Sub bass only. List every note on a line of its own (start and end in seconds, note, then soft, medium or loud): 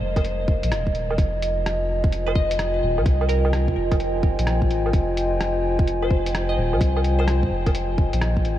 0.01 0.62 F1 loud
0.64 0.73 A#1 medium
0.72 1.18 D#1 medium
1.18 2.82 F1 loud
2.83 3.00 D#1 loud
2.99 3.76 C2 loud
3.77 4.37 F1 loud
4.39 4.72 A#1 loud
4.71 4.93 G#1 medium
4.94 6.57 F1 medium
6.58 6.75 D#1 loud
6.74 7.51 C2 loud
7.52 8.12 F1 loud
8.13 8.47 A#1 loud
8.45 8.59 G#1 medium